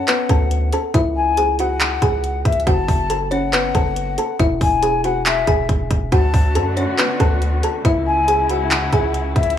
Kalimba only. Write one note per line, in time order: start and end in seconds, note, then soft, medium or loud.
0.08 0.25 B3 medium
0.08 0.25 B4 medium
0.29 0.70 A4 medium
0.29 0.70 A5 medium
0.73 0.89 A4 medium
0.73 0.90 A5 medium
0.94 1.35 E4 loud
0.94 1.35 E5 medium
1.37 1.54 G#4 medium
1.37 1.54 G#5 medium
1.60 2.00 F#4 medium
1.60 2.00 F#5 medium
2.02 2.63 G#4 medium
2.02 2.63 G#5 medium
2.67 3.07 F#4 loud
2.67 3.08 F#5 medium
3.10 3.27 A4 medium
3.10 3.27 A5 medium
3.31 3.48 C#4 medium
3.31 3.48 C#5 medium
3.53 3.70 B3 medium
3.53 3.70 B4 medium
3.75 4.15 A4 medium
3.75 4.16 A5 medium
4.18 4.35 A4 medium
4.18 4.35 A5 medium
4.39 4.80 E4 loud
4.39 4.80 E5 medium
4.83 4.99 G#4 medium
4.83 5.00 G#5 medium
5.04 5.45 F#4 medium
5.04 5.45 F#5 medium
5.48 6.08 G#4 medium
5.48 6.09 G#5 medium
6.12 6.53 F#4 loud
6.12 6.53 F#5 medium
6.55 6.72 A4 medium
6.55 6.72 A5 medium
6.77 6.94 C#4 medium
6.77 6.93 C#5 medium
6.98 7.16 B3 medium
6.98 7.15 B4 medium
7.20 7.61 A4 medium
7.20 7.61 A5 medium
7.63 7.80 A4 medium
7.63 7.80 A5 medium
7.85 8.25 E4 loud
7.85 8.26 E5 medium
8.28 8.45 G#4 medium
8.28 8.45 G#5 medium
8.50 8.90 F#4 medium
8.50 8.91 F#5 medium
8.93 9.54 G#4 medium
8.93 9.54 G#5 medium